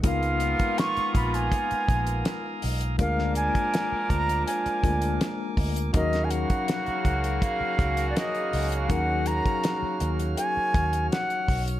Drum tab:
HH |xxxxxxxxxxxxx-ox|x-xxx-xxxxxxx-ox|xxxxxxxxx-xxxxox|x-xxx-xxx-xxxxox|
SD |----o-------o---|-o--o-------o---|-o--o-------o---|----o-------o---|
BD |o--o--o-o-o-----|o--o--o---o---o-|o--o--o-o-o-----|o--o------o---o-|